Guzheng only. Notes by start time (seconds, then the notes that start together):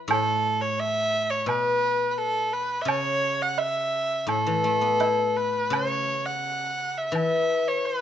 Already playing: E3
0.08 A2
1.46 B2
2.85 C#3
4.27 A2
4.47 E3
4.64 A3
4.81 B3
5.00 E4
5.70 C#3
7.12 E3